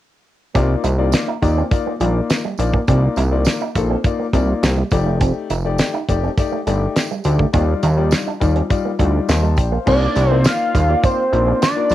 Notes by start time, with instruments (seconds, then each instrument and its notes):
0.54 analog synth bass C2, grand piano A#3 D#4 F4 D5, clean electric guitar C4, kick, closed hi-hat, tambourine
0.84 analog synth bass C2, clean electric guitar D#4, closed hi-hat, tambourine
0.98 grand piano A#3 D#4 F4 D5, muted clean electric guitar stroke
1.12 snare, closed hi-hat, tambourine
1.28 clean electric guitar D#4
1.42 analog synth bass D#2, grand piano A#3 D#4 F4 D5, muted clean electric guitar stroke, kick, closed hi-hat, tambourine
1.57 clean electric guitar C4
1.71 grand piano A#3 D#4 F4 D5, muted clean electric guitar stroke, kick, closed hi-hat, tambourine
1.87 clean electric guitar A#3
2.00 analog synth bass A#1, clean electric guitar G3, grand piano A#3 D#4 F4 D5, closed hi-hat, tambourine
2.30 snare, closed hi-hat, tambourine
2.45 clean electric guitar G3
2.58 analog synth bass A#1, grand piano A#3 D#4 F4 D5, muted clean electric guitar stroke, closed hi-hat, tambourine
2.74 clean electric guitar A#3, kick
2.88 analog synth bass C2, grand piano A#3 D#4 F4 D5, clean electric guitar C4, kick, closed hi-hat, tambourine
3.16 analog synth bass C2, clean electric guitar D#4, closed hi-hat, tambourine
3.31 grand piano A#3 D#4 F4 D5, muted clean electric guitar stroke
3.45 snare, closed hi-hat, tambourine
3.61 clean electric guitar D#4
3.75 analog synth bass A#1, grand piano A#3 D#4 F4 A4, muted clean electric guitar stroke, kick, closed hi-hat, tambourine
3.90 clean electric guitar C4
4.04 grand piano A#3 D#4 F4 D5, muted clean electric guitar stroke, kick, closed hi-hat, tambourine
4.19 clean electric guitar A#3
4.33 analog synth bass C2, clean electric guitar G3, grand piano A#3 D#4 F4 D5, kick, closed hi-hat, tambourine
4.63 analog synth bass C2, snare, closed hi-hat, tambourine
4.77 clean electric guitar G3
4.91 analog synth bass F1, grand piano A3 D#4 G4 D5, muted clean electric guitar stroke, kick, closed hi-hat, tambourine
5.06 clean electric guitar A3
5.21 clean electric guitar C4, kick, closed hi-hat, tambourine
5.50 analog synth bass F1, clean electric guitar D#4, closed hi-hat, tambourine
5.65 grand piano A3 D#4 G4 D5, muted clean electric guitar stroke
5.78 snare, closed hi-hat, tambourine
5.94 clean electric guitar D#4
6.08 analog synth bass F1, grand piano A3 D#4 G4 D5, muted clean electric guitar stroke, kick, closed hi-hat, tambourine
6.23 clean electric guitar C4
6.38 grand piano A3 D#4 G4 D5, muted clean electric guitar stroke, kick, closed hi-hat, tambourine
6.52 clean electric guitar A3
6.67 analog synth bass G1, clean electric guitar G3, grand piano A3 D#4 G4 D5, closed hi-hat, tambourine
6.96 snare, closed hi-hat, tambourine
7.11 clean electric guitar G3
7.24 analog synth bass D2, grand piano A3 D#4 G4 D5, muted clean electric guitar stroke, closed hi-hat, tambourine
7.39 clean electric guitar A3, kick
7.53 analog synth bass D#2, grand piano G3 D#4 F4 D5, clean electric guitar C4, kick, closed hi-hat, tambourine
7.83 analog synth bass D#2, clean electric guitar D4, closed hi-hat, tambourine
7.97 grand piano G3 D#4 F4 D5, muted clean electric guitar stroke
8.11 snare, closed hi-hat, tambourine
8.27 clean electric guitar D4
8.40 analog synth bass D#2, grand piano G3 D#4 F4 D5, muted clean electric guitar stroke, kick, closed hi-hat, tambourine
8.56 clean electric guitar C4, closed hi-hat
8.70 grand piano G3 D#4 F4 D5, muted clean electric guitar stroke, kick, closed hi-hat, tambourine
8.85 clean electric guitar A#3
8.99 analog synth bass D2, grand piano G3 D#4 F4 D5, clean electric guitar G3, kick, closed hi-hat, tambourine
9.29 analog synth bass D#2, grand piano C5 F5 C6, snare, closed hi-hat, tambourine
9.43 clean electric guitar G3, grand piano D#5 A5
9.57 analog synth bass A#1, grand piano D5 G5, muted clean electric guitar stroke, kick, closed hi-hat, tambourine
9.72 clean electric guitar A#3, grand piano C5 F5
9.86 analog synth bass C2, grand piano A#3 D#4 F4 D5, clean electric guitar C4, analog synth lead D5, kick, crash, tambourine
10.16 analog synth bass C2, muted clean electric guitar stroke, closed hi-hat, tambourine
10.30 grand piano A#3 D#4 F4 D5, clean electric guitar A#3, analog synth lead C5
10.44 analog synth lead F5, snare, closed hi-hat, tambourine
10.75 analog synth bass D#2, clean electric guitar G3, kick, closed hi-hat, tambourine
10.88 grand piano A#3 D#4 F4 D5
11.03 clean electric guitar A#3, analog synth lead C5, kick, closed hi-hat, tambourine
11.33 analog synth bass A#1, grand piano A#3 D#4 F4 D5, muted clean electric guitar stroke, closed hi-hat
11.47 clean electric guitar C4
11.62 clean electric guitar A#3, analog synth lead D5, snare, closed hi-hat, tambourine
11.76 grand piano A#3 D#4 F4 D5
11.90 analog synth bass A#1, muted clean electric guitar stroke, closed hi-hat, tambourine